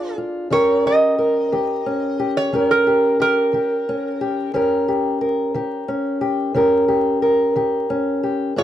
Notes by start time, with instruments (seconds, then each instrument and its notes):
Already playing: steel-string acoustic guitar A#2 D4 F4 G#4, resonator guitar played with a steel bar D5
0.18 steel-string acoustic guitar F4
0.50 steel-string acoustic guitar D#3 C#4 G4 A#4, resonator guitar played with a steel bar C#5
0.86 steel-string acoustic guitar G4, resonator guitar played with a steel bar D#5
1.19 steel-string acoustic guitar A#4
1.52 steel-string acoustic guitar D#3 G4
1.86 steel-string acoustic guitar C#4
2.19 steel-string acoustic guitar G4
2.37 resonator guitar played with a steel bar C#5
2.52 steel-string acoustic guitar D#3 C#4 G4 A#4
2.71 resonator guitar played with a steel bar A#4
2.87 steel-string acoustic guitar G4
3.20 steel-string acoustic guitar G4, resonator guitar played with a steel bar A#4
3.53 steel-string acoustic guitar D#3 G4
3.89 steel-string acoustic guitar C#4
4.21 steel-string acoustic guitar G4
4.54 steel-string acoustic guitar D#3 C#4 G4 A#4
4.88 steel-string acoustic guitar G4
5.21 steel-string acoustic guitar A#4
5.54 steel-string acoustic guitar D#3 G4
5.88 steel-string acoustic guitar C#4
6.21 steel-string acoustic guitar G4
6.54 steel-string acoustic guitar D#3 C#4 G4 A#4
6.88 steel-string acoustic guitar G4
7.22 steel-string acoustic guitar A#4
7.56 steel-string acoustic guitar D#3 G4
7.90 steel-string acoustic guitar C#4
8.23 steel-string acoustic guitar G4
8.56 steel-string acoustic guitar A#2 D4 F4 G#4, resonator guitar played with a steel bar C#5